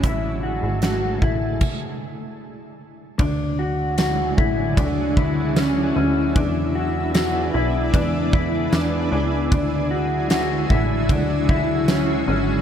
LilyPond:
<<
  \new Staff \with { instrumentName = "Clean electric guitar" } { \time 4/4 \key d \lydian \tempo 4 = 76 e'8 fis'8 fis'8 e'8 r2 | d'8 fis'8 fis'8 e'8 d'8 e'8 cis'8 cis'8 | d'8 fis'8 fis'8 e'8 d'8 e'8 d'8 d'8 | d'8 fis'8 fis'8 e'8 d'8 e'8 cis'8 cis'8 | }
  \new Staff \with { instrumentName = "Ambient pad" } { \clef bass \time 4/4 \key d \lydian << { e'2 r2 | e'1~ | e'1 | e'1 | } \\ { <d gis a>2 r2 | <d fis gis>1 | <gis b d'>1 | <d fis>1 | } >> }
  \new Staff \with { instrumentName = "Analog synth bass" } { \clef bass \time 4/4 \key d \lydian a,,8. gis,,8. a,,8 r2 | d,4. a,,8 d,4. d,8 | e,4. b,,8 e,4 e,8 cis,8 | d,4. a,,8 d,4. gis,,8 | }
  \new DrumStaff \with { instrumentName = "Drums" } \drummode { \time 4/4 <hh bd>4 <hh sn>8 bd8 <cymc bd>4 r4 | <bd cymr>4 <cymr sn tamb>8 bd8 <bd cymr>8 bd8 <cymr sn tamb>4 | <bd cymr>4 <cymr sn tamb>4 <bd cymr>8 bd8 <cymr sn tamb>4 | <bd cymr>4 <cymr sn tamb>8 bd8 <bd cymr>8 bd8 <cymr sn tamb>4 | }
>>